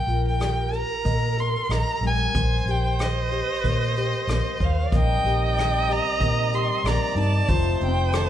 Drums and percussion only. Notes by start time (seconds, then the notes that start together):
0.07 closed hi-hat
0.40 cross-stick, closed hi-hat
0.73 closed hi-hat
1.05 kick, closed hi-hat
1.38 closed hi-hat
1.70 cross-stick, closed hi-hat
2.03 closed hi-hat
2.35 kick, closed hi-hat
2.67 closed hi-hat
2.99 cross-stick, closed hi-hat
3.31 closed hi-hat
3.64 kick, closed hi-hat
3.96 closed hi-hat
4.28 cross-stick, closed hi-hat
4.60 kick, closed hi-hat
4.92 kick, closed hi-hat
5.26 closed hi-hat
5.58 cross-stick, closed hi-hat
5.90 closed hi-hat
6.20 kick, closed hi-hat
6.53 closed hi-hat
6.85 cross-stick, closed hi-hat
7.16 closed hi-hat
7.48 kick, closed hi-hat
7.80 closed hi-hat
8.12 cross-stick, closed hi-hat